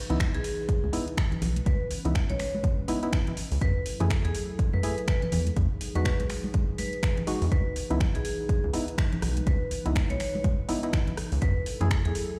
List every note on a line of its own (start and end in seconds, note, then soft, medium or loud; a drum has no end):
0.00 3.57 E3 medium
0.00 1.64 D#4 medium
0.00 3.57 B4 medium
0.10 0.26 C#2 medium
0.10 0.18 B3 medium
0.10 0.18 D#4 medium
0.10 0.19 E4 loud
0.10 closed hi-hat soft
0.10 low conga medium
0.20 finger snap loud
0.20 kick loud
0.20 closed hi-hat medium
0.34 0.41 B1 medium
0.34 0.42 G#4 medium
0.34 closed hi-hat medium
0.44 0.83 G#4 medium
0.44 open hi-hat loud
0.69 kick loud
0.69 closed hi-hat medium
0.83 0.90 C#2 loud
0.83 high conga medium
0.93 1.05 B3 medium
0.93 1.05 D#4 medium
0.93 1.06 E4 medium
0.93 open hi-hat loud
1.08 closed hi-hat soft
1.17 finger snap loud
1.17 kick loud
1.17 closed hi-hat medium
1.32 closed hi-hat soft
1.32 low conga medium
1.42 1.61 B1 medium
1.42 open hi-hat loud
1.42 low conga loud
1.56 closed hi-hat medium
1.56 high conga medium
1.66 1.77 C#2 loud
1.66 3.59 C#4 medium
1.66 1.85 B4 medium
1.66 kick loud
1.66 closed hi-hat medium
1.91 open hi-hat loud
2.05 2.21 C#2 medium
2.05 2.20 B3 medium
2.05 2.20 D#4 medium
2.05 2.20 E4 medium
2.05 closed hi-hat soft
2.05 low conga medium
2.15 finger snap loud
2.15 kick loud
2.15 closed hi-hat medium
2.29 2.37 B1 loud
2.29 2.64 C#5 medium
2.29 closed hi-hat soft
2.29 high conga medium
2.39 finger snap soft
2.39 open hi-hat loud
2.55 high conga medium
2.63 kick loud
2.63 closed hi-hat medium
2.63 high conga medium
2.88 3.00 B3 medium
2.88 3.01 D#4 medium
2.88 3.01 E4 loud
2.88 open hi-hat loud
2.88 high conga medium
3.03 3.18 B3 loud
3.03 3.18 D#4 medium
3.03 3.18 E4 loud
3.03 closed hi-hat soft
3.13 finger snap loud
3.13 kick loud
3.13 closed hi-hat medium
3.27 closed hi-hat soft
3.27 low conga medium
3.37 open hi-hat loud
3.51 3.59 C#2 loud
3.51 open hi-hat medium
3.61 3.72 F#2 loud
3.61 5.30 F#3 medium
3.61 5.30 E4 medium
3.61 5.30 A4 medium
3.61 3.81 B4 medium
3.61 kick loud
3.61 closed hi-hat medium
3.86 open hi-hat loud
4.00 4.16 F#2 medium
4.00 4.09 A3 medium
4.00 4.09 E4 medium
4.00 4.09 G#4 loud
4.00 closed hi-hat soft
4.00 low conga medium
4.10 finger snap loud
4.10 kick loud
4.10 closed hi-hat medium
4.25 4.32 E2 loud
4.25 4.33 G#4 medium
4.25 closed hi-hat soft
4.35 open hi-hat loud
4.59 kick loud
4.59 closed hi-hat medium
4.73 4.80 F#2 loud
4.73 4.80 B4 medium
4.73 high conga medium
4.83 4.96 A3 medium
4.83 4.96 E4 medium
4.83 4.96 G#4 medium
4.83 4.93 B4 medium
4.83 open hi-hat loud
4.98 closed hi-hat soft
5.08 5.17 B4 medium
5.08 finger snap loud
5.08 kick loud
5.08 closed hi-hat medium
5.22 5.29 B4 medium
5.22 closed hi-hat soft
5.22 low conga medium
5.32 5.51 E2 medium
5.32 7.49 F#3 medium
5.32 11.38 D#4 medium
5.32 7.49 G#4 medium
5.32 open hi-hat loud
5.32 low conga medium
5.47 closed hi-hat soft
5.47 high conga medium
5.57 5.67 E2 loud
5.57 kick loud
5.57 closed hi-hat medium
5.81 open hi-hat loud
5.95 6.11 E2 medium
5.95 6.10 G#3 medium
5.95 6.11 D#4 medium
5.95 6.11 F#4 medium
5.95 6.02 B4 medium
5.95 closed hi-hat soft
5.95 low conga medium
6.05 6.15 B4 medium
6.05 finger snap loud
6.05 kick loud
6.05 closed hi-hat medium
6.20 6.27 B1 loud
6.20 closed hi-hat soft
6.20 high conga medium
6.30 finger snap soft
6.30 open hi-hat loud
6.44 high conga medium
6.54 kick loud
6.54 closed hi-hat medium
6.54 high conga medium
6.78 7.17 B4 medium
6.78 open hi-hat loud
6.78 high conga medium
6.93 closed hi-hat soft
7.03 finger snap loud
7.03 kick loud
7.03 closed hi-hat medium
7.17 closed hi-hat soft
7.17 low conga medium
7.27 7.45 G#3 medium
7.27 7.45 D#4 medium
7.27 7.45 F#4 medium
7.27 open hi-hat loud
7.42 7.49 E2 loud
7.42 open hi-hat medium
7.51 7.62 C#2 loud
7.51 11.38 E3 medium
7.51 11.38 B4 medium
7.51 7.71 B4 medium
7.51 kick loud
7.51 closed hi-hat medium
7.76 open hi-hat loud
7.90 8.06 C#2 medium
7.90 7.99 B3 loud
7.90 7.99 D#4 medium
7.90 7.99 E4 loud
7.90 closed hi-hat soft
7.90 low conga medium
8.00 finger snap loud
8.00 kick loud
8.00 closed hi-hat medium
8.15 8.22 B1 loud
8.15 8.23 G#4 medium
8.15 closed hi-hat soft
8.25 8.64 G#4 medium
8.25 open hi-hat loud
8.49 kick loud
8.49 closed hi-hat medium
8.64 8.71 C#2 loud
8.64 high conga medium
8.73 8.86 B3 medium
8.73 8.86 D#4 medium
8.73 8.86 E4 medium
8.73 open hi-hat loud
8.88 closed hi-hat soft
8.98 finger snap loud
8.98 kick loud
8.98 closed hi-hat medium
9.12 closed hi-hat soft
9.12 low conga medium
9.22 9.41 B1 medium
9.22 cross-stick medium
9.22 open hi-hat loud
9.22 low conga medium
9.37 closed hi-hat soft
9.37 high conga medium
9.47 9.57 C#2 loud
9.47 9.66 B4 medium
9.47 kick loud
9.47 closed hi-hat medium
9.71 open hi-hat loud
9.85 10.02 C#2 medium
9.85 10.01 B3 medium
9.85 10.01 D#4 medium
9.85 10.01 E4 medium
9.85 closed hi-hat soft
9.85 low conga medium
9.96 finger snap loud
9.96 kick loud
9.96 closed hi-hat medium
10.10 10.17 B1 loud
10.10 10.44 C#5 medium
10.10 closed hi-hat medium
10.10 high conga medium
10.20 finger snap soft
10.20 open hi-hat loud
10.35 high conga medium
10.44 kick loud
10.44 closed hi-hat medium
10.44 high conga medium
10.69 10.81 B3 medium
10.69 10.81 D#4 medium
10.69 10.81 E4 loud
10.69 open hi-hat loud
10.69 high conga medium
10.83 10.98 B3 loud
10.83 10.98 D#4 medium
10.83 10.99 E4 loud
10.83 closed hi-hat soft
10.93 finger snap loud
10.93 kick loud
10.93 closed hi-hat medium
11.07 closed hi-hat soft
11.07 low conga medium
11.17 cross-stick medium
11.17 open hi-hat loud
11.32 11.39 C#2 loud
11.32 open hi-hat medium
11.42 11.52 F#2 loud
11.42 12.39 F#3 medium
11.42 12.39 E4 medium
11.42 12.39 A4 medium
11.42 11.61 B4 medium
11.42 kick loud
11.42 closed hi-hat medium
11.66 open hi-hat loud
11.81 11.97 F#2 medium
11.81 11.89 A3 loud
11.81 11.89 E4 medium
11.81 11.89 G#4 loud
11.81 closed hi-hat soft
11.81 low conga medium
11.91 finger snap loud
11.91 kick loud
11.91 closed hi-hat medium
12.05 12.12 E2 loud
12.05 12.13 G#4 medium
12.05 closed hi-hat medium
12.15 open hi-hat loud